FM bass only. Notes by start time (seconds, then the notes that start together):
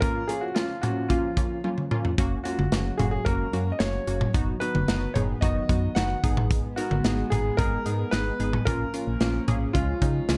2.18 F#1
2.59 F#1
2.72 F#1
2.99 F#1
3.26 F#1
3.53 F#2
3.80 F#1
4.07 F#1
4.34 F#1
4.75 F#1
4.88 F#1
5.15 F#1
5.42 F#1
5.69 F#2
5.96 F#1
6.24 G#1
6.91 G#1
7.05 G#1
7.32 G#1
7.59 G#1
7.86 G#2
8.13 G#1
8.40 G#1
8.67 A#1
9.07 A#1
9.21 A#1
9.48 A#1
9.75 C#2
10.02 C#3
10.29 C#2